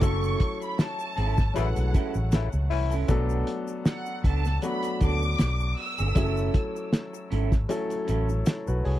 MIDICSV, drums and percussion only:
0, 0, Header, 1, 2, 480
1, 0, Start_track
1, 0, Tempo, 767263
1, 15, Time_signature, 4, 2, 24, 8
1, 5626, End_track
2, 0, Start_track
2, 0, Title_t, "Drums"
2, 9, Note_on_c, 9, 42, 93
2, 12, Note_on_c, 9, 36, 122
2, 16, Note_on_c, 9, 82, 76
2, 72, Note_off_c, 9, 42, 0
2, 74, Note_off_c, 9, 36, 0
2, 78, Note_off_c, 9, 82, 0
2, 147, Note_on_c, 9, 82, 49
2, 210, Note_off_c, 9, 82, 0
2, 250, Note_on_c, 9, 42, 83
2, 252, Note_on_c, 9, 36, 95
2, 312, Note_off_c, 9, 42, 0
2, 315, Note_off_c, 9, 36, 0
2, 387, Note_on_c, 9, 82, 49
2, 449, Note_off_c, 9, 82, 0
2, 493, Note_on_c, 9, 38, 119
2, 494, Note_on_c, 9, 82, 57
2, 498, Note_on_c, 9, 42, 89
2, 556, Note_off_c, 9, 38, 0
2, 556, Note_off_c, 9, 82, 0
2, 561, Note_off_c, 9, 42, 0
2, 622, Note_on_c, 9, 82, 46
2, 684, Note_off_c, 9, 82, 0
2, 734, Note_on_c, 9, 42, 68
2, 797, Note_off_c, 9, 42, 0
2, 861, Note_on_c, 9, 82, 49
2, 864, Note_on_c, 9, 36, 102
2, 868, Note_on_c, 9, 38, 34
2, 924, Note_off_c, 9, 82, 0
2, 927, Note_off_c, 9, 36, 0
2, 931, Note_off_c, 9, 38, 0
2, 974, Note_on_c, 9, 42, 97
2, 976, Note_on_c, 9, 82, 62
2, 1037, Note_off_c, 9, 42, 0
2, 1039, Note_off_c, 9, 82, 0
2, 1103, Note_on_c, 9, 42, 54
2, 1103, Note_on_c, 9, 82, 49
2, 1165, Note_off_c, 9, 82, 0
2, 1166, Note_off_c, 9, 42, 0
2, 1216, Note_on_c, 9, 42, 77
2, 1216, Note_on_c, 9, 82, 45
2, 1217, Note_on_c, 9, 36, 96
2, 1278, Note_off_c, 9, 82, 0
2, 1279, Note_off_c, 9, 42, 0
2, 1280, Note_off_c, 9, 36, 0
2, 1341, Note_on_c, 9, 82, 48
2, 1403, Note_off_c, 9, 82, 0
2, 1451, Note_on_c, 9, 82, 75
2, 1452, Note_on_c, 9, 42, 100
2, 1457, Note_on_c, 9, 38, 116
2, 1513, Note_off_c, 9, 82, 0
2, 1514, Note_off_c, 9, 42, 0
2, 1519, Note_off_c, 9, 38, 0
2, 1580, Note_on_c, 9, 82, 52
2, 1643, Note_off_c, 9, 82, 0
2, 1694, Note_on_c, 9, 46, 69
2, 1757, Note_off_c, 9, 46, 0
2, 1823, Note_on_c, 9, 82, 53
2, 1885, Note_off_c, 9, 82, 0
2, 1929, Note_on_c, 9, 42, 101
2, 1930, Note_on_c, 9, 82, 70
2, 1933, Note_on_c, 9, 36, 114
2, 1992, Note_off_c, 9, 42, 0
2, 1993, Note_off_c, 9, 82, 0
2, 1995, Note_off_c, 9, 36, 0
2, 2062, Note_on_c, 9, 82, 47
2, 2124, Note_off_c, 9, 82, 0
2, 2171, Note_on_c, 9, 42, 87
2, 2234, Note_off_c, 9, 42, 0
2, 2299, Note_on_c, 9, 82, 48
2, 2362, Note_off_c, 9, 82, 0
2, 2412, Note_on_c, 9, 38, 114
2, 2412, Note_on_c, 9, 82, 60
2, 2417, Note_on_c, 9, 42, 89
2, 2475, Note_off_c, 9, 38, 0
2, 2475, Note_off_c, 9, 82, 0
2, 2480, Note_off_c, 9, 42, 0
2, 2540, Note_on_c, 9, 82, 49
2, 2603, Note_off_c, 9, 82, 0
2, 2654, Note_on_c, 9, 36, 93
2, 2655, Note_on_c, 9, 42, 63
2, 2716, Note_off_c, 9, 36, 0
2, 2718, Note_off_c, 9, 42, 0
2, 2783, Note_on_c, 9, 82, 50
2, 2789, Note_on_c, 9, 38, 33
2, 2846, Note_off_c, 9, 82, 0
2, 2851, Note_off_c, 9, 38, 0
2, 2890, Note_on_c, 9, 42, 90
2, 2897, Note_on_c, 9, 82, 61
2, 2953, Note_off_c, 9, 42, 0
2, 2960, Note_off_c, 9, 82, 0
2, 3019, Note_on_c, 9, 42, 49
2, 3028, Note_on_c, 9, 82, 50
2, 3082, Note_off_c, 9, 42, 0
2, 3090, Note_off_c, 9, 82, 0
2, 3131, Note_on_c, 9, 42, 76
2, 3136, Note_on_c, 9, 36, 97
2, 3138, Note_on_c, 9, 82, 45
2, 3194, Note_off_c, 9, 42, 0
2, 3199, Note_off_c, 9, 36, 0
2, 3200, Note_off_c, 9, 82, 0
2, 3268, Note_on_c, 9, 82, 44
2, 3331, Note_off_c, 9, 82, 0
2, 3369, Note_on_c, 9, 42, 102
2, 3374, Note_on_c, 9, 38, 112
2, 3376, Note_on_c, 9, 82, 78
2, 3431, Note_off_c, 9, 42, 0
2, 3437, Note_off_c, 9, 38, 0
2, 3438, Note_off_c, 9, 82, 0
2, 3505, Note_on_c, 9, 82, 52
2, 3567, Note_off_c, 9, 82, 0
2, 3609, Note_on_c, 9, 46, 74
2, 3672, Note_off_c, 9, 46, 0
2, 3741, Note_on_c, 9, 42, 56
2, 3742, Note_on_c, 9, 82, 55
2, 3804, Note_off_c, 9, 42, 0
2, 3805, Note_off_c, 9, 82, 0
2, 3850, Note_on_c, 9, 42, 95
2, 3853, Note_on_c, 9, 36, 115
2, 3856, Note_on_c, 9, 82, 81
2, 3912, Note_off_c, 9, 42, 0
2, 3916, Note_off_c, 9, 36, 0
2, 3918, Note_off_c, 9, 82, 0
2, 3985, Note_on_c, 9, 82, 47
2, 4048, Note_off_c, 9, 82, 0
2, 4092, Note_on_c, 9, 42, 83
2, 4094, Note_on_c, 9, 36, 97
2, 4155, Note_off_c, 9, 42, 0
2, 4156, Note_off_c, 9, 36, 0
2, 4231, Note_on_c, 9, 82, 50
2, 4293, Note_off_c, 9, 82, 0
2, 4333, Note_on_c, 9, 38, 120
2, 4337, Note_on_c, 9, 82, 59
2, 4338, Note_on_c, 9, 42, 90
2, 4396, Note_off_c, 9, 38, 0
2, 4399, Note_off_c, 9, 82, 0
2, 4401, Note_off_c, 9, 42, 0
2, 4468, Note_on_c, 9, 82, 54
2, 4530, Note_off_c, 9, 82, 0
2, 4577, Note_on_c, 9, 42, 63
2, 4640, Note_off_c, 9, 42, 0
2, 4705, Note_on_c, 9, 36, 103
2, 4705, Note_on_c, 9, 38, 35
2, 4707, Note_on_c, 9, 82, 47
2, 4767, Note_off_c, 9, 36, 0
2, 4768, Note_off_c, 9, 38, 0
2, 4769, Note_off_c, 9, 82, 0
2, 4812, Note_on_c, 9, 42, 94
2, 4820, Note_on_c, 9, 82, 64
2, 4874, Note_off_c, 9, 42, 0
2, 4882, Note_off_c, 9, 82, 0
2, 4943, Note_on_c, 9, 42, 49
2, 4949, Note_on_c, 9, 82, 54
2, 5006, Note_off_c, 9, 42, 0
2, 5011, Note_off_c, 9, 82, 0
2, 5053, Note_on_c, 9, 42, 78
2, 5057, Note_on_c, 9, 82, 48
2, 5116, Note_off_c, 9, 42, 0
2, 5119, Note_off_c, 9, 82, 0
2, 5187, Note_on_c, 9, 82, 42
2, 5249, Note_off_c, 9, 82, 0
2, 5292, Note_on_c, 9, 82, 81
2, 5294, Note_on_c, 9, 42, 114
2, 5299, Note_on_c, 9, 38, 114
2, 5354, Note_off_c, 9, 82, 0
2, 5357, Note_off_c, 9, 42, 0
2, 5362, Note_off_c, 9, 38, 0
2, 5427, Note_on_c, 9, 82, 52
2, 5489, Note_off_c, 9, 82, 0
2, 5537, Note_on_c, 9, 46, 72
2, 5600, Note_off_c, 9, 46, 0
2, 5626, End_track
0, 0, End_of_file